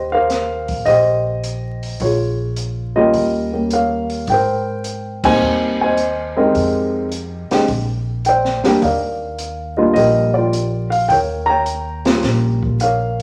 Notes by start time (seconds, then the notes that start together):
Already playing: D#2 G4 C5
0.12 A#4 C5 F5
0.30 snare, closed hi-hat
0.68 kick, open hi-hat
0.86 A#1 G4 C5 D#5, kick, open hi-hat
1.44 closed hi-hat
1.83 open hi-hat
2.00 A#1 C#5, kick, open hi-hat
2.04 F4 G#4
2.56 closed hi-hat
2.96 G3 A#3 C#4 F4 G4 A#4 D#5
3.14 D#2, kick, open hi-hat
3.53 G3 A#3 C#4 G4
3.70 A#4 C#5 F5, closed hi-hat
4.10 open hi-hat
4.27 G#1 G5, kick, open hi-hat
4.32 A#4 C5
4.84 closed hi-hat
5.24 G3 A#3 C4 D#4 C5 D#5 G#5, kick, crash
5.41 D#2
5.81 C5 D#5 G#5
5.98 closed hi-hat
6.37 G#3 C4 D#4 G4 G#4 A#4 D#5
6.55 F2, kick, open hi-hat
7.12 closed hi-hat
7.50 G#3 C4 D4 G4, muted upright bass stroke, snare, open hi-hat
7.68 A#1, kick, open hi-hat
8.25 C5 G5, closed hi-hat
8.29 D5
8.45 snare
8.64 G3 A#3 D4 G4, muted upright bass stroke, snare, open hi-hat
8.82 D#2 A#4 D5 F5, kick, open hi-hat
9.39 closed hi-hat
9.77 G3 A#3 D4 F4 D#5
9.94 A#1 G4 A#4 D#5, kick, open hi-hat
10.34 F4 D5
10.38 G4
10.53 closed hi-hat
10.90 F5, open hi-hat
11.08 D#2 A#4 C#5 G5, kick, open hi-hat
11.46 C#5 G5 A#5
11.66 closed hi-hat
12.05 G3 A#3 C#4 F4, snare, open hi-hat
12.23 A#1, kick, snare, open hi-hat
12.63 kick
12.80 A#4 C#5 F5, closed hi-hat